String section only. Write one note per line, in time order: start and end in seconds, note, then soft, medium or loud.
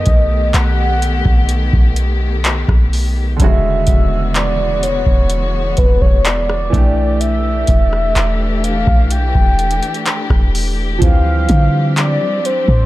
0.00 3.36 D#3 medium
0.00 3.36 A3 medium
0.00 3.36 B3 medium
0.00 3.36 G4 medium
3.40 6.70 E3 medium
3.40 6.70 G#3 medium
3.40 6.70 B3 medium
3.40 6.70 F#4 medium
6.73 10.98 E3 medium
6.73 10.98 A3 medium
6.73 10.98 D4 medium
6.73 12.86 G4 medium
11.01 12.86 G3 medium
11.01 12.86 C4 medium
11.01 12.86 D4 medium